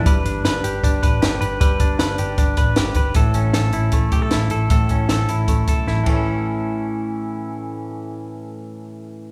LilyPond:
<<
  \new Staff \with { instrumentName = "Clean electric guitar" } { \time 4/4 \key a \mixolydian \tempo 4 = 155 <g b'>8 d'8 b'8 g'8 d'8 b'8 g'8 b'8 | <g b'>8 d'8 b'8 g'8 d'8 b'8 g'8 b'8 | <a, a'>8 cis'8 a'8 e'8 a8 g'16 a'16 e'8 a'8 | <a, a'>8 cis'8 a'8 e'8 a8 a'8 e'8 <a, e a cis' e' a'>8~ |
<a, e a cis' e' a'>1~ | <a, e a cis' e' a'>1 | }
  \new Staff \with { instrumentName = "Picked electric bass" } { \clef bass \time 4/4 \key a \mixolydian g,,8 g,,8 g,,8 g,,8 g,,8 a,,8 g,,8 g,,8 | g,,8 g,,8 g,,8 g,,8 g,,8 a,,8 g,,8 g,,8 | a,,8 a,,8 a,,8 a,,8 a,,8 b,,8 a,,8 a,,8 | a,,8 a,,8 a,,8 a,,8 a,,8 b,,8 a,,8 a,,8~ |
a,,1~ | a,,1 | }
  \new DrumStaff \with { instrumentName = "Drums" } \drummode { \time 4/4 <hh bd>8 hh8 <hh sn>8 hh8 <hh bd>8 <hh bd>8 <hh sn>8 hh8 | <hh bd>8 <hh bd>8 <hh sn>8 hh8 <hh bd>8 <hh bd>8 <hh sn>8 <hh bd>8 | <hh bd>8 hh8 <hh sn>8 hh8 <hh bd>8 <hh bd>8 <hh sn>8 hh8 | <hh bd>8 <hh bd>8 <hh sn>8 hh8 <hh bd>8 <hh bd>8 sn16 tommh16 <bd cymr>8 |
r4 r4 r4 r4 | r4 r4 r4 r4 | }
>>